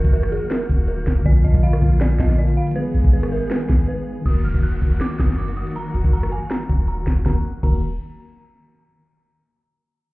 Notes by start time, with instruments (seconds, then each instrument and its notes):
Already playing: tine electric piano D#3 F#3 A#3 F#4 A#4, string section D#3 F#3 A#3 F#4, synth bell A#4
0.05 808-style bass F#1, kick, closed hi-hat
0.13 synth bell A#4, closed hi-hat
0.23 cross-stick
0.32 synth bell G#4, closed hi-hat
0.51 synth bell A#4, finger snap, snare, closed hi-hat
0.69 808-style bass D#1, kick, closed hi-hat
0.88 synth bell A#4, closed hi-hat
1.07 808-style bass D#1, finger snap, kick, snare, closed hi-hat
1.22 tine electric piano D3 F3, synth bell D5
1.26 808-style bass A#1, string section D3 F3 F4, tine electric piano A#3 F4, kick, closed hi-hat
1.30 tine electric piano A#4
1.44 808-style bass A#1, synth bell D#5, closed hi-hat
1.55 808-style bass A#1, kick
1.63 synth bell F5, closed hi-hat
1.73 cross-stick
1.82 808-style bass A#1, kick, closed hi-hat
2.01 synth bell D5, finger snap, snare, closed hi-hat
2.19 808-style bass A#1, synth bell D#5, finger snap, kick, snare, closed hi-hat
2.29 snare
2.36 tine electric piano D3 F3 A#3 F4, synth bell D5, closed hi-hat
2.41 tine electric piano A#4
2.48 closed hi-hat
2.57 synth bell F5, closed hi-hat
2.62 closed hi-hat
2.67 closed hi-hat
2.71 tine electric piano D#3 G#3, closed hi-hat
2.76 string section D#3 G#3 B3 G#4, tine electric piano B3 G#4, synth bell B4, closed hi-hat
2.80 tine electric piano B4
2.94 808-style bass G#1, closed hi-hat
2.99 closed hi-hat
3.04 808-style bass G#1, kick, closed hi-hat
3.09 closed hi-hat
3.13 synth bell B4, closed hi-hat
3.23 cross-stick
3.32 synth bell A#4, open hi-hat
3.51 synth bell B4, finger snap, snare, closed hi-hat
3.69 808-style bass G#1, kick, snare, closed hi-hat
3.79 closed hi-hat
3.88 synth bell B4
4.22 tine electric piano D#3 A#3, closed hi-hat
4.26 808-style bass D#1, string section D#3 F#3 A#3 F#4, tine electric piano F#4, synth bell D#6, kick, downlifter
4.30 tine electric piano A#4
4.44 808-style bass D#1, synth bell F6, closed hi-hat
4.54 808-style bass D#1, kick
4.63 synth bell F#6, closed hi-hat
4.82 808-style bass D#1, kick, closed hi-hat
5.01 synth bell D6, finger snap, snare, closed hi-hat
5.19 808-style bass F#1, synth bell D#6, finger snap, kick, snare, closed hi-hat
5.29 snare
5.38 synth bell D6, closed hi-hat
5.48 closed hi-hat
5.57 synth bell D#6, closed hi-hat
5.62 closed hi-hat
5.67 closed hi-hat
5.71 closed hi-hat
5.76 synth bell A#5, closed hi-hat
5.94 808-style bass D#1, closed hi-hat
6.04 808-style bass F#1, kick, closed hi-hat
6.13 synth bell A#5, closed hi-hat
6.23 cross-stick
6.32 synth bell G#5, closed hi-hat
6.50 synth bell A#5, finger snap, snare, closed hi-hat
6.69 808-style bass D#1, kick, closed hi-hat
6.88 synth bell A#5, closed hi-hat
7.07 808-style bass D#1, finger snap, kick, snare, closed hi-hat
7.26 808-style bass D#1, string section D#3 F#3 A#3 F#4, tine electric piano D#3 A#3 F#4 A#4, synth bell A#5, kick, snare
7.63 808-style bass D#1, tine electric piano D#3 A#3 F#4 A#4, synth bell A#5, kick, crash